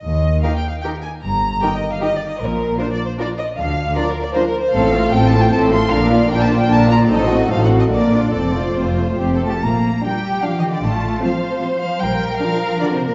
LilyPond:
<<
  \new Staff \with { instrumentName = "Violin section" } { \time 3/4 \key ees \major \tempo 4 = 152 ees''4 \tuplet 3/2 { f''8 g''8 f''8 } g''8 aes''8 | bes''4 \tuplet 3/2 { g''8 ees''8 f''8 ees''8 d''8 ees''8 } | bes'4 \tuplet 3/2 { c''8 d''8 c''8 } d''8 ees''8 | f''4 \tuplet 3/2 { d''8 bes'8 d''8 c''8 bes'8 c''8 } |
\key bes \major f''4 \tuplet 3/2 { g''8 a''8 g''8 } a''8 c'''8 | f''4 \tuplet 3/2 { g''8 a''8 g''8 } a''8 bes''8 | ees''4 \tuplet 3/2 { f''8 fis''8 ees''8 } d''4 | d''4 c''4. a''8 |
bes''4 g''4 \tuplet 3/2 { f''8 ees''8 d''8 } | a''4 f''4 r8 f''8 | g''4 f''4 \tuplet 3/2 { d''8 c''8 bes'8 } | }
  \new Staff \with { instrumentName = "Violin section" } { \time 3/4 \key ees \major r4 <g' bes'>4 <g' bes'>4 | r4 <g' bes'>4 <g' bes'>4 | r4 <f' bes'>4 <f' bes'>4 | r4 <f' bes'>4 <f' bes'>4 |
\key bes \major <a' c''>8 <f' a'>8 <a' c''>8 <f' a'>8 <a' c''>8 <f' a'>8 | <d' bes'>8 <f' d''>8 <d' bes'>8 <f' d''>8 <d' bes'>8 <f' d''>8 | <a' c''>8 <fis' a'>8 <a' c''>8 <fis' a'>8 <d' bes'>8 <f' d''>8 | a'8 <f' c''>8 f'4 \tuplet 3/2 { g'8 a'8 g'8 } |
r4 g'2 | f'4 c''2 | bes'2. | }
  \new Staff \with { instrumentName = "Viola section" } { \time 3/4 \key ees \major r4 <ees ees'>4 <ees ees'>4 | r4 <ees ees'>4 <ees ees'>4 | r4 <f d'>4 <f d'>4 | r4 <f d'>4 <f d'>4 |
\key bes \major <a c'>8 <f a>8 <a c'>8 <f a>8 <a c'>8 <f a>8 | <d d'>8 <f bes>8 <d d'>8 <f bes>8 <d d'>8 <f bes>8 | <fis ees'>8 <a c'>8 <fis ees'>8 <a c'>8 <d bes>8 <f d'>8 | <a c'>8 <f a>8 <a c'>8 <f a>8 <a c'>8 <f a>8 |
r4 <d' f'>4 <d' f'>4 | r4 <c' f'>4 <c' f'>4 | r4 <d' f'>4 <d' f'>4 | }
  \new Staff \with { instrumentName = "Cello section" } { \clef bass \time 3/4 \key ees \major ees,4 r2 | g,4 r2 | bes,4 r2 | d4 r2 |
\key bes \major a,4 a,4 a,4 | bes,4 bes,4 bes,4 | a,4 a,4 bes,4 | f,4 f,4 f,8 a8 |
bes4 g4 \tuplet 3/2 { f8 ees8 d8 } | a4 f4 r8 f8 | g4 f4 \tuplet 3/2 { d8 c8 bes,8 } | }
  \new Staff \with { instrumentName = "Double bass section" } { \clef bass \time 3/4 \key ees \major ees,4 r2 | g,,4 r2 | bes,,4 r2 | d,4 r2 |
\key bes \major a,,4 a,,4 a,,4 | bes,,4 bes,,4 bes,,4 | a,,4 a,,4 bes,,4 | f,,4 f,,4 f,,4 |
bes,,4 r2 | a,,4 r2 | bes,,4 r2 | }
>>